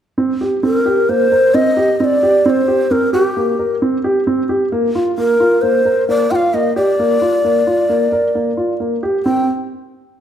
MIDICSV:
0, 0, Header, 1, 3, 480
1, 0, Start_track
1, 0, Key_signature, -3, "minor"
1, 0, Tempo, 453858
1, 186, Time_signature, 5, 2, 24, 8
1, 10792, End_track
2, 0, Start_track
2, 0, Title_t, "Shakuhachi"
2, 0, Program_c, 0, 77
2, 679, Note_on_c, 0, 70, 69
2, 1156, Note_on_c, 0, 72, 75
2, 1172, Note_off_c, 0, 70, 0
2, 1634, Note_on_c, 0, 75, 78
2, 1650, Note_off_c, 0, 72, 0
2, 2117, Note_off_c, 0, 75, 0
2, 2117, Note_on_c, 0, 75, 73
2, 2159, Note_on_c, 0, 74, 79
2, 2170, Note_off_c, 0, 75, 0
2, 2593, Note_off_c, 0, 74, 0
2, 2593, Note_on_c, 0, 74, 70
2, 2642, Note_on_c, 0, 72, 76
2, 2652, Note_off_c, 0, 74, 0
2, 3080, Note_on_c, 0, 70, 68
2, 3096, Note_off_c, 0, 72, 0
2, 3306, Note_off_c, 0, 70, 0
2, 3312, Note_on_c, 0, 66, 62
2, 3429, Note_off_c, 0, 66, 0
2, 3429, Note_on_c, 0, 67, 62
2, 3993, Note_off_c, 0, 67, 0
2, 5480, Note_on_c, 0, 70, 75
2, 5939, Note_on_c, 0, 72, 79
2, 5955, Note_off_c, 0, 70, 0
2, 6426, Note_off_c, 0, 72, 0
2, 6440, Note_on_c, 0, 74, 81
2, 6673, Note_on_c, 0, 79, 77
2, 6689, Note_off_c, 0, 74, 0
2, 6721, Note_on_c, 0, 77, 83
2, 6732, Note_off_c, 0, 79, 0
2, 6917, Note_on_c, 0, 75, 75
2, 6932, Note_off_c, 0, 77, 0
2, 7146, Note_off_c, 0, 75, 0
2, 7152, Note_on_c, 0, 74, 86
2, 9264, Note_off_c, 0, 74, 0
2, 9785, Note_on_c, 0, 79, 67
2, 10008, Note_off_c, 0, 79, 0
2, 10792, End_track
3, 0, Start_track
3, 0, Title_t, "Grand piano"
3, 0, Program_c, 1, 0
3, 187, Note_on_c, 1, 60, 64
3, 345, Note_off_c, 1, 60, 0
3, 433, Note_on_c, 1, 67, 52
3, 590, Note_off_c, 1, 67, 0
3, 667, Note_on_c, 1, 60, 62
3, 826, Note_off_c, 1, 60, 0
3, 906, Note_on_c, 1, 67, 56
3, 1066, Note_off_c, 1, 67, 0
3, 1153, Note_on_c, 1, 58, 62
3, 1311, Note_off_c, 1, 58, 0
3, 1393, Note_on_c, 1, 70, 56
3, 1551, Note_off_c, 1, 70, 0
3, 1631, Note_on_c, 1, 60, 61
3, 1790, Note_off_c, 1, 60, 0
3, 1870, Note_on_c, 1, 67, 59
3, 2030, Note_off_c, 1, 67, 0
3, 2116, Note_on_c, 1, 60, 63
3, 2274, Note_off_c, 1, 60, 0
3, 2357, Note_on_c, 1, 67, 59
3, 2515, Note_off_c, 1, 67, 0
3, 2597, Note_on_c, 1, 60, 68
3, 2755, Note_off_c, 1, 60, 0
3, 2834, Note_on_c, 1, 67, 59
3, 2993, Note_off_c, 1, 67, 0
3, 3076, Note_on_c, 1, 60, 59
3, 3234, Note_off_c, 1, 60, 0
3, 3310, Note_on_c, 1, 67, 61
3, 3471, Note_off_c, 1, 67, 0
3, 3561, Note_on_c, 1, 58, 61
3, 3717, Note_off_c, 1, 58, 0
3, 3798, Note_on_c, 1, 70, 58
3, 3956, Note_off_c, 1, 70, 0
3, 4040, Note_on_c, 1, 60, 63
3, 4197, Note_off_c, 1, 60, 0
3, 4276, Note_on_c, 1, 67, 61
3, 4434, Note_off_c, 1, 67, 0
3, 4516, Note_on_c, 1, 60, 64
3, 4674, Note_off_c, 1, 60, 0
3, 4751, Note_on_c, 1, 67, 60
3, 4910, Note_off_c, 1, 67, 0
3, 4994, Note_on_c, 1, 58, 68
3, 5152, Note_off_c, 1, 58, 0
3, 5237, Note_on_c, 1, 65, 60
3, 5395, Note_off_c, 1, 65, 0
3, 5474, Note_on_c, 1, 58, 62
3, 5632, Note_off_c, 1, 58, 0
3, 5712, Note_on_c, 1, 65, 61
3, 5871, Note_off_c, 1, 65, 0
3, 5955, Note_on_c, 1, 58, 61
3, 6113, Note_off_c, 1, 58, 0
3, 6191, Note_on_c, 1, 70, 60
3, 6350, Note_off_c, 1, 70, 0
3, 6436, Note_on_c, 1, 58, 67
3, 6593, Note_off_c, 1, 58, 0
3, 6676, Note_on_c, 1, 65, 64
3, 6833, Note_off_c, 1, 65, 0
3, 6915, Note_on_c, 1, 58, 63
3, 7071, Note_off_c, 1, 58, 0
3, 7151, Note_on_c, 1, 67, 59
3, 7309, Note_off_c, 1, 67, 0
3, 7397, Note_on_c, 1, 58, 69
3, 7552, Note_off_c, 1, 58, 0
3, 7631, Note_on_c, 1, 65, 58
3, 7788, Note_off_c, 1, 65, 0
3, 7873, Note_on_c, 1, 58, 61
3, 8029, Note_off_c, 1, 58, 0
3, 8112, Note_on_c, 1, 65, 56
3, 8268, Note_off_c, 1, 65, 0
3, 8349, Note_on_c, 1, 58, 63
3, 8506, Note_off_c, 1, 58, 0
3, 8589, Note_on_c, 1, 70, 56
3, 8746, Note_off_c, 1, 70, 0
3, 8832, Note_on_c, 1, 58, 64
3, 8988, Note_off_c, 1, 58, 0
3, 9066, Note_on_c, 1, 65, 57
3, 9223, Note_off_c, 1, 65, 0
3, 9307, Note_on_c, 1, 58, 60
3, 9464, Note_off_c, 1, 58, 0
3, 9550, Note_on_c, 1, 67, 59
3, 9706, Note_off_c, 1, 67, 0
3, 9789, Note_on_c, 1, 60, 64
3, 10010, Note_off_c, 1, 60, 0
3, 10792, End_track
0, 0, End_of_file